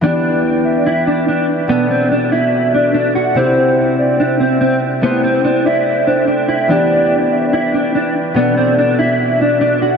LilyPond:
<<
  \new Staff \with { instrumentName = "Soft synth lead" } { \time 4/4 \key e \minor \tempo 4 = 144 d''4. e''4. r4 | d''4. e''4 d''8 r4 | c''4. d''4. r4 | c''4. d''4 c''8 r4 |
d''4. e''4. r4 | d''4. e''4 d''8 r4 | }
  \new Staff \with { instrumentName = "Glass harmonica" } { \time 4/4 \key e \minor << { g''1 | r1 | g''1~ | g''1~ |
g''1 | r1 | } \\ { <e' b' d''>1 | <b fis' a'>1 | <c' c'' e''>1 | <a a'>1 |
<e' b' d''>1 | <b fis' a'>1 | } >> }
  \new Staff \with { instrumentName = "Clean electric guitar" } { \time 4/4 \key e \minor d'2 e'8 d'8 d'8 r8 | b8 c'8 d'8 e'4 d'8 d'8 fis'8 | c'2 d'8 c'8 c'8 r8 | b8 c'8 d'8 e'4 d'8 d'8 e'8 |
d'2 e'8 d'8 d'8 r8 | b8 c'8 d'8 e'4 d'8 d'8 fis'8 | }
  \new Staff \with { instrumentName = "Harp" } { \time 4/4 \key e \minor <e b d' g'>1 | <b, b d' a'>1 | <c c' e' g'>1 | <a e' g' c''>1 |
<e b d' g'>1 | <b, b d' a'>1 | }
>>